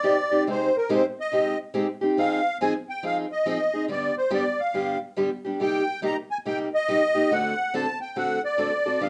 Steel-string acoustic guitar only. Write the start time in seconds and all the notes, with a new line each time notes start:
0.03 C3 G3 C4 D#4 G4
0.31 C4 D#4 G4
0.47 C3 G#3 C4 D#4 G4
0.89 C3 G#3 C4 D#4 G4
1.32 C3 G#3 C4 D#4 G4
1.74 C3 G#3 C4 D#4 G4
2.01 C4 D#4 G4
2.17 F3 C4 D#4 G#4
2.61 F3 C4 D#4 G#4
3.03 F3 C4 D#4 G#4
3.46 F3 C4 D#4 G#4
3.74 C4 D#4 G#4
3.88 G2 D3 G3 B3 D4 G4
4.30 G2 D3 G3 B3 D4 G4
4.74 G2 D3 G3 B3 D4 G4
5.17 G2 D3 G3 B3 D4 G4
5.45 G3 B3 D4 G4
5.60 C3 G3 A#3 D#4 G4
6.02 C3 G3 A#3 D#4 G4
6.45 C3 G3 A#3 D#4 G4
6.88 C3 G3 A#3 D#4 G4
7.15 A#3 D#4 G4
7.31 D3 A3 C4 F#4 A4
7.74 D3 A3 C4 F#4 A4
8.16 D3 A3 C4 F#4 A4
8.58 D3 A3 C4 F#4 A4
8.86 C4 F#4 A4
9.00 G2 D3 F3 B3 D4 G4